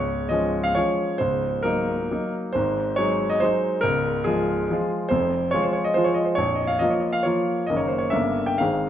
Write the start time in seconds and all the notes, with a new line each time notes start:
Already playing: C#1 C#2 C#5
0.29 F3 G#3 C#4 D#5
0.64 F5
0.75 F3 G#3 C#4 C#5
1.18 C#1 C#2 C5
1.63 F#3 A#3 D#4 A#4
2.11 F#3 A#3 D#4
2.53 G#1 G#2 C5
2.96 F#3 G#3 D#4 C#5
3.30 D#5
3.40 F#3 G#3 D#4 C5
3.81 C#1 C#2 A#4
4.24 F3 G#3 F4 G#4
4.71 F3 G#3 F4
5.09 F1 F2 C5
5.51 F3 G#3 F4 C#5
5.63 C5
5.73 C#5
5.84 D#5
5.94 F3 G#3 F4 C5
6.04 C#5
6.14 D#5
6.25 C5
6.35 A#0 A#1 C#5
6.55 D#5
6.67 F5
6.79 F3 A#3 F4 D#5
6.90 C#5
7.00 D#5
7.13 F5
7.23 F3 A#3 F4 C#5
7.67 F#1 F#2 D#3 A#3 D#5
7.71 A#4
7.77 C#5
7.87 C5
7.98 C#5
8.10 G1 G2 C#3 A#3 A#4 E5
8.46 G5
8.58 G#1 G#2 D#3 C4 G#4 F5